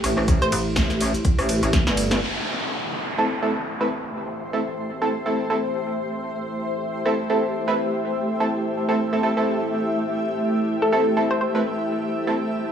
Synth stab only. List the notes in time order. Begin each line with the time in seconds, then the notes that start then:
3.18 A3 C4 E4 A4
3.43 A3 C4 E4 A4
3.81 A3 C4 E4 B4
4.53 A3 C4 E4 A4
5.02 A3 C4 E4 A4
5.26 A3 C4 E4 A4
5.50 A3 C4 E4 A4
7.05 A3 C4 E4 A4
7.30 A3 C4 E4 A4
7.68 A3 C4 E4 B4
8.40 A3 C4 E4 A4
8.89 A3 C4 E4 A4
9.13 A3 C4 E4 A4
9.23 A3 C4 E4 A4
9.37 A3 C4 E4 A4
10.93 A3 C4 E4 A4
11.17 A3 C4 E4 A4
11.55 A3 C4 E4 B4
12.27 A3 C4 E4 A4